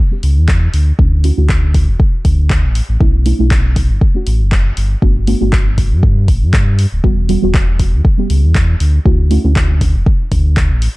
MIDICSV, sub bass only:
0, 0, Header, 1, 2, 480
1, 0, Start_track
1, 0, Tempo, 504202
1, 941, Time_signature, 4, 2, 24, 8
1, 10441, End_track
2, 0, Start_track
2, 0, Title_t, "Sub bass"
2, 0, Program_c, 0, 38
2, 220, Note_on_c, 0, 37, 91
2, 350, Note_on_c, 0, 40, 102
2, 364, Note_off_c, 0, 37, 0
2, 653, Note_off_c, 0, 40, 0
2, 700, Note_on_c, 0, 38, 87
2, 881, Note_off_c, 0, 38, 0
2, 941, Note_on_c, 0, 38, 97
2, 1254, Note_off_c, 0, 38, 0
2, 1311, Note_on_c, 0, 38, 96
2, 1791, Note_on_c, 0, 26, 101
2, 1805, Note_off_c, 0, 38, 0
2, 1871, Note_off_c, 0, 26, 0
2, 2141, Note_on_c, 0, 38, 100
2, 2511, Note_on_c, 0, 33, 82
2, 2525, Note_off_c, 0, 38, 0
2, 2680, Note_off_c, 0, 33, 0
2, 2750, Note_on_c, 0, 33, 91
2, 2831, Note_off_c, 0, 33, 0
2, 2861, Note_on_c, 0, 35, 97
2, 3175, Note_off_c, 0, 35, 0
2, 3231, Note_on_c, 0, 35, 96
2, 3711, Note_on_c, 0, 30, 104
2, 3725, Note_off_c, 0, 35, 0
2, 3791, Note_off_c, 0, 30, 0
2, 4061, Note_on_c, 0, 33, 92
2, 4192, Note_on_c, 0, 30, 104
2, 4206, Note_off_c, 0, 33, 0
2, 4494, Note_off_c, 0, 30, 0
2, 4541, Note_on_c, 0, 31, 85
2, 4721, Note_off_c, 0, 31, 0
2, 4781, Note_on_c, 0, 31, 98
2, 5095, Note_off_c, 0, 31, 0
2, 5152, Note_on_c, 0, 31, 92
2, 5631, Note_on_c, 0, 43, 101
2, 5646, Note_off_c, 0, 31, 0
2, 5981, Note_on_c, 0, 31, 94
2, 5996, Note_off_c, 0, 43, 0
2, 6111, Note_on_c, 0, 43, 92
2, 6125, Note_off_c, 0, 31, 0
2, 6534, Note_off_c, 0, 43, 0
2, 6591, Note_on_c, 0, 26, 95
2, 6671, Note_off_c, 0, 26, 0
2, 6701, Note_on_c, 0, 28, 100
2, 7015, Note_off_c, 0, 28, 0
2, 7071, Note_on_c, 0, 28, 91
2, 7551, Note_on_c, 0, 40, 100
2, 7565, Note_off_c, 0, 28, 0
2, 7631, Note_off_c, 0, 40, 0
2, 7901, Note_on_c, 0, 37, 95
2, 8030, Note_on_c, 0, 40, 100
2, 8045, Note_off_c, 0, 37, 0
2, 8333, Note_off_c, 0, 40, 0
2, 8380, Note_on_c, 0, 38, 89
2, 8561, Note_off_c, 0, 38, 0
2, 8621, Note_on_c, 0, 38, 98
2, 8935, Note_off_c, 0, 38, 0
2, 8991, Note_on_c, 0, 38, 90
2, 9471, Note_on_c, 0, 26, 103
2, 9485, Note_off_c, 0, 38, 0
2, 9551, Note_off_c, 0, 26, 0
2, 9821, Note_on_c, 0, 38, 100
2, 10191, Note_on_c, 0, 33, 83
2, 10205, Note_off_c, 0, 38, 0
2, 10360, Note_off_c, 0, 33, 0
2, 10441, End_track
0, 0, End_of_file